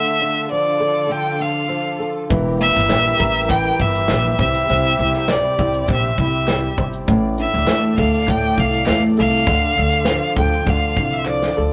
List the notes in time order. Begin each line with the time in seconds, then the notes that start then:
Already playing: D3 A3 D4 F4 A4 E5
0.21 D4
0.51 F3 D5
0.80 A4
1.09 D3 G5
1.40 F4 F5
1.69 F3
1.99 A4
2.30 E1 E3 E4 G4 A#4, kick, shaker
2.58 A#3 E5, shaker
2.75 G1, snare, shaker
2.89 A#1 G3, snare, clap, shaker
3.19 A1 A#4, kick, shaker
3.36 shaker
3.48 E3 G5, kick, clap, shaker
3.79 G1 E4 E5, kick, shaker
3.95 shaker
4.08 A#1 G3, snare, clap, shaker
4.38 C2 C3 C4 E5, kick, shaker
4.54 shaker
4.69 C2 C3, shaker
4.99 C2 C4, shaker
5.14 snare
5.28 G3 D5, snare, clap, shaker
5.58 C2 C5, kick, shaker
5.74 shaker
5.87 A#1 C3, kick, clap, shaker
5.92 E5
6.17 C2 E4, kick, shaker
6.23 E5
6.48 G3, snare, clap, shaker
6.77 G1 C5, kick, shaker
6.93 shaker
7.08 A1 A2 A3 A4 D5, kick, shaker
7.38 D4 E5, shaker
7.54 D2, shaker
7.67 E2 A3, snare, clap, shaker
7.98 D2 A4 F5, kick, shaker
8.14 shaker
8.28 A2 G5, kick, clap, shaker
8.58 C2 F5, kick, shaker
8.73 shaker
8.86 E2 A3 F5, snare, clap, shaker
9.17 C2 A4 F5, shaker
9.47 D2 D3 D4 F4, kick, shaker
9.76 D2 D4, shaker
9.92 shaker
10.05 F3, snare, clap, shaker
10.36 D2 A4 G5, kick, shaker
10.66 D2 D3 F5, kick, shaker
10.96 C2 F4, kick, shaker
11.13 E5
11.25 F3 D5, clap
11.42 snare
11.57 D2 A4